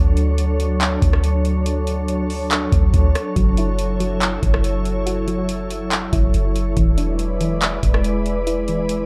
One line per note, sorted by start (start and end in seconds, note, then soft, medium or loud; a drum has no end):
0.00 0.98 D2 loud
0.00 6.73 F#3 medium
0.00 3.32 D4 medium
0.00 6.73 A4 medium
0.00 6.73 C#5 medium
0.17 closed hi-hat medium
0.38 closed hi-hat medium
0.60 closed hi-hat medium
0.81 clap loud
0.81 closed hi-hat medium
1.02 2.68 D2 loud
1.02 kick loud
1.02 closed hi-hat medium
1.13 cross-stick loud
1.24 closed hi-hat medium
1.45 closed hi-hat medium
1.66 closed hi-hat medium
1.87 closed hi-hat medium
2.08 closed hi-hat medium
2.30 open hi-hat medium
2.51 clap loud
2.51 closed hi-hat medium
2.72 2.93 D2 loud
2.72 kick loud
2.72 closed hi-hat medium
2.94 3.14 D2 loud
2.94 kick medium
2.94 closed hi-hat medium
3.15 cross-stick loud
3.15 closed hi-hat medium
3.36 4.39 F#1 loud
3.36 3.99 F#3 medium
3.36 9.06 E4 medium
3.36 kick loud
3.36 closed hi-hat medium
3.57 4.85 E4 medium
3.57 closed hi-hat medium
3.79 closed hi-hat medium
4.00 5.26 F#3 loud
4.00 closed hi-hat medium
4.21 clap loud
4.21 closed hi-hat medium
4.43 6.09 F#1 loud
4.43 kick loud
4.43 closed hi-hat medium
4.54 cross-stick loud
4.64 closed hi-hat medium
4.85 closed hi-hat medium
5.06 6.34 F#4 medium
5.06 closed hi-hat medium
5.28 6.55 F#3 medium
5.28 closed hi-hat medium
5.49 closed hi-hat medium
5.70 closed hi-hat medium
5.91 clap loud
5.91 closed hi-hat medium
6.13 6.33 F#1 loud
6.13 6.77 E4 medium
6.13 kick loud
6.13 closed hi-hat medium
6.34 6.75 F#1 loud
6.34 closed hi-hat medium
6.56 closed hi-hat medium
6.77 7.79 E1 loud
6.77 7.39 E3 medium
6.77 9.06 G#3 medium
6.77 9.06 B4 medium
6.77 9.06 D5 medium
6.77 kick loud
6.77 closed hi-hat medium
6.98 8.26 D4 medium
6.98 closed hi-hat medium
7.19 closed hi-hat medium
7.41 8.67 E3 medium
7.41 closed hi-hat medium
7.62 clap loud
7.62 closed hi-hat medium
7.83 9.06 E1 loud
7.83 kick loud
7.83 closed hi-hat medium
7.94 cross-stick loud
8.04 closed hi-hat medium
8.26 closed hi-hat medium
8.47 9.06 E4 medium
8.47 closed hi-hat medium
8.68 9.06 E3 medium
8.68 closed hi-hat medium
8.89 closed hi-hat medium